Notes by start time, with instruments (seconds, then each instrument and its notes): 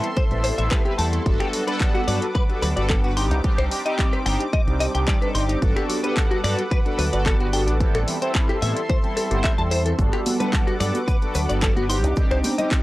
Already playing: analog synth pad A4 E5 C6
0.03 synth arpeggio sound E4, closed hi-hat
0.16 synth arpeggio sound E3, clean electric guitar C5, kick, closed hi-hat
0.30 fingered electric bass A1, analog polysynth G3 B3 C4 E4 A4, synth arpeggio sound C4, closed hi-hat
0.44 synth arpeggio sound C4, clean electric guitar C5, open hi-hat
0.58 fingered electric bass A1, synth arpeggio sound E3, analog polysynth G3 B3 C4 E4 A4, clean electric guitar E5, closed hi-hat
0.71 synth arpeggio sound G3, clean electric guitar B4, kick, clap, closed hi-hat
0.85 analog polysynth G3 B3 C4 E4 B4, synth arpeggio sound C4, clean electric guitar G4, closed hi-hat
0.98 fingered electric bass E2, analog polysynth G3 B3 C4 E4 A4, synth arpeggio sound A3, clean electric guitar A5, open hi-hat
1.12 synth arpeggio sound A3, closed hi-hat
1.25 fingered electric bass G1, synth arpeggio sound F#3, analog polysynth G3 B3 D4 F#4 A4, analog synth pad B4 F#5 D6, kick, closed hi-hat
1.40 synth arpeggio sound B3, clean electric guitar G4, finger snap, closed hi-hat
1.53 synth arpeggio sound F#3, open hi-hat
1.67 analog polysynth G3 B3 D4 A4 F#5, synth arpeggio sound D4, clean electric guitar B4, closed hi-hat
1.80 synth arpeggio sound F#3, kick, clap, closed hi-hat
1.95 clean electric guitar F#4, synth arpeggio sound F#4, closed hi-hat
2.07 fingered electric bass G2, synth arpeggio sound F#3, analog polysynth G3 B3 D4 F#4 A4, clean electric guitar D5, open hi-hat
2.22 synth arpeggio sound F#4, closed hi-hat
2.35 synth arpeggio sound F#3, clean electric guitar B4, kick, closed hi-hat
2.49 analog polysynth G3 B3 D4 F#4 A4, synth arpeggio sound D4, closed hi-hat
2.62 fingered electric bass D2, synth arpeggio sound F#3, clean electric guitar B4, open hi-hat
2.76 fingered electric bass G1, analog polysynth G3 B3 D4 F#4 A4, synth arpeggio sound F#4, clean electric guitar D5, closed hi-hat
2.89 synth arpeggio sound F#3, clean electric guitar A4, kick, clap, closed hi-hat
3.03 analog polysynth G3 B3 D4 F#4 B4, synth arpeggio sound B3, clean electric guitar F#4, closed hi-hat
3.16 analog polysynth G3 C4 D4 D#4 G4, analog synth pad C4, synth arpeggio sound D#4, clean electric guitar C6, open hi-hat
3.31 fingered electric bass C2, synth arpeggio sound D#4, closed hi-hat
3.43 analog polysynth G3 C4 D4 D#4 G4, synth arpeggio sound G3, kick, closed hi-hat
3.58 fingered electric bass C2, synth arpeggio sound D4, clean electric guitar C5, finger snap, closed hi-hat
3.71 synth arpeggio sound G3, open hi-hat
3.85 analog polysynth G3 C4 D#4 G4, synth arpeggio sound D#4, clean electric guitar D#5, closed hi-hat
3.98 synth arpeggio sound G3, kick, clap, closed hi-hat
4.13 synth arpeggio sound G4, clean electric guitar B4, closed hi-hat
4.25 fingered electric bass G1, analog polysynth G3 C4 D4 D#4 G4, synth arpeggio sound G3, clean electric guitar G5, finger snap, open hi-hat
4.40 synth arpeggio sound G4, closed hi-hat
4.53 synth arpeggio sound G3, clean electric guitar D#5, kick, closed hi-hat
4.67 fingered electric bass C2, analog polysynth G3 C4 D4 D#4 G4, synth arpeggio sound D#4, closed hi-hat
4.80 synth arpeggio sound G3, clean electric guitar D#5, open hi-hat
4.94 fingered electric bass C2, analog polysynth G3 C4 D4 D#4 G4, synth arpeggio sound G4, clean electric guitar G5, closed hi-hat
5.07 synth arpeggio sound G3, clean electric guitar D5, kick, clap, closed hi-hat
5.21 analog polysynth G3 C4 D4 D#4 A4, synth arpeggio sound D4, clean electric guitar B4, closed hi-hat
5.34 fingered electric bass G1, analog polysynth G3 C4 D4 D#4 G4, synth arpeggio sound D#4, clean electric guitar C6, open hi-hat
5.49 synth arpeggio sound D#4, closed hi-hat
5.61 fingered electric bass G1, synth arpeggio sound F#3, analog polysynth G3 B3 D4 F#4 A4, analog synth pad B4 F#5, kick, closed hi-hat
5.76 synth arpeggio sound B3, clean electric guitar G4, finger snap, closed hi-hat
5.89 synth arpeggio sound F#3, open hi-hat
6.03 analog polysynth G3 B3 D4 A4 F#5, synth arpeggio sound D4, clean electric guitar B4, closed hi-hat
6.16 synth arpeggio sound F#3, kick, clap, closed hi-hat
6.31 synth arpeggio sound F#4, clean electric guitar F#4, closed hi-hat
6.43 fingered electric bass G2, synth arpeggio sound F#3, analog polysynth G3 B3 D4 F#4 A4, clean electric guitar D5, finger snap, open hi-hat
6.58 synth arpeggio sound F#4, closed hi-hat
6.71 synth arpeggio sound F#3, clean electric guitar B4, kick, closed hi-hat
6.85 analog polysynth G3 B3 D4 F#4 A4, synth arpeggio sound D4, closed hi-hat
6.98 fingered electric bass D2, synth arpeggio sound F#3, clean electric guitar B4, open hi-hat
7.12 fingered electric bass G1, analog polysynth G3 B3 D4 F#4 A4, synth arpeggio sound F#4, clean electric guitar D5, closed hi-hat
7.26 synth arpeggio sound F#3, clean electric guitar A4, kick, clap, closed hi-hat
7.39 analog polysynth G3 B3 D4 F#4 B4, synth arpeggio sound B3, clean electric guitar F#4, closed hi-hat
7.52 analog polysynth G3 B3 D4 F#4 A4, synth arpeggio sound D4, clean electric guitar G5, open hi-hat
7.67 fingered electric bass A1, synth arpeggio sound D4, closed hi-hat
7.80 synth arpeggio sound E3, analog polysynth G3 B3 C4 E4 A4, analog synth pad A4 E5 C6, kick, closed hi-hat
7.94 fingered electric bass A1, synth arpeggio sound A3, clean electric guitar A4, finger snap, closed hi-hat
8.08 synth arpeggio sound E3, open hi-hat
8.21 analog polysynth G3 C4 E4 A4, synth arpeggio sound C4, clean electric guitar C5, closed hi-hat
8.35 synth arpeggio sound E3, kick, clap, closed hi-hat
8.49 synth arpeggio sound E4, clean electric guitar G4, closed hi-hat
8.62 fingered electric bass A2, synth arpeggio sound E3, analog polysynth G3 B3 C4 E4 A4, clean electric guitar E5, open hi-hat
8.76 synth arpeggio sound E4, closed hi-hat
8.89 synth arpeggio sound E3, clean electric guitar C5, kick, closed hi-hat
9.03 analog polysynth G3 B3 C4 E4 A4, synth arpeggio sound C4, closed hi-hat
9.17 synth arpeggio sound G3, clean electric guitar A4, open hi-hat
9.31 fingered electric bass G1, analog polysynth G3 B3 C4 E4 C5, synth arpeggio sound G4, clean electric guitar A4, closed hi-hat
9.44 synth arpeggio sound A3, clean electric guitar E5, kick, clap, closed hi-hat
9.58 fingered electric bass E2, analog polysynth G3 C4 E4 A4, synth arpeggio sound G3, clean electric guitar A5, closed hi-hat
9.71 synth arpeggio sound E4, clean electric guitar C5, open hi-hat
9.86 synth arpeggio sound E3, clean electric guitar A4, closed hi-hat
9.98 fingered electric bass G1, synth arpeggio sound F#3, analog polysynth G3 B3 D4 F#4 A4, analog synth pad B4 F#5 D6, kick, closed hi-hat, cabasa
10.13 synth arpeggio sound B3, clean electric guitar G4, finger snap, closed hi-hat
10.26 synth arpeggio sound F#3, open hi-hat, high conga, cabasa
10.40 analog polysynth G3 B3 D4 A4 F#5, synth arpeggio sound D4, clean electric guitar B4, closed hi-hat, low conga, cabasa
10.53 synth arpeggio sound F#3, kick, clap, closed hi-hat, cabasa
10.67 clean electric guitar F#4, synth arpeggio sound F#4, closed hi-hat
10.80 fingered electric bass G2, synth arpeggio sound F#3, analog polysynth G3 B3 D4 F#4 A4, clean electric guitar D5, finger snap, open hi-hat, cabasa
10.95 synth arpeggio sound F#4, closed hi-hat, high conga, cabasa
11.07 synth arpeggio sound F#3, clean electric guitar B4, kick, closed hi-hat, cabasa
11.22 analog polysynth G3 B3 D4 F#4 A4, synth arpeggio sound D4, closed hi-hat
11.35 fingered electric bass D2, synth arpeggio sound F#3, clean electric guitar B4, open hi-hat, cabasa
11.49 fingered electric bass G1, analog polysynth G3 B3 D4 F#4 A4, synth arpeggio sound F#4, clean electric guitar D5, closed hi-hat, cabasa
11.62 synth arpeggio sound F#3, clean electric guitar A4, kick, clap, closed hi-hat, cabasa
11.76 analog polysynth G3 B3 D4 F#4 B4, synth arpeggio sound B3, clean electric guitar F#4, closed hi-hat, high conga
11.89 analog polysynth G3 C4 D4 D#4 G4, analog synth pad C4 D6, synth arpeggio sound D#4, clean electric guitar C6, open hi-hat, cabasa
12.04 fingered electric bass C2, synth arpeggio sound D#4, closed hi-hat, cabasa
12.16 analog polysynth G3 C4 D4 D#4 G4, synth arpeggio sound G3, kick, closed hi-hat, cabasa
12.31 fingered electric bass C2, synth arpeggio sound D4, clean electric guitar C5, finger snap, closed hi-hat
12.44 synth arpeggio sound G3, open hi-hat, high conga, cabasa
12.58 analog polysynth G3 C4 D#4 G4, synth arpeggio sound D#4, clean electric guitar D#5, closed hi-hat, low conga, cabasa
12.71 synth arpeggio sound G3, kick, clap, closed hi-hat, cabasa